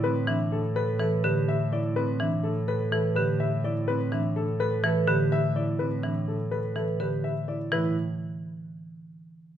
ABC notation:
X:1
M:4/4
L:1/8
Q:1/4=125
K:Am
V:1 name="Grand piano"
B e A B A B e d | B e A B A B e d | B e A B A B e d | B e A B A B e d |
B z6 z |]
V:2 name="Vibraphone"
C D z A B G z E | C D z A B G z E | C D z A B G z E | C D z A B G z E |
E z6 z |]
V:3 name="Marimba" clef=bass
z E, z2 E, D, z2 | z E, z2 E, D, z2 | z E, z2 E, D, z2 | z E, z2 E, D, z2 |
E, z6 z |]
V:4 name="Double bass" clef=bass
A,,8- | A,,8- | A,,8- | A,,8 |
A,, z6 z |]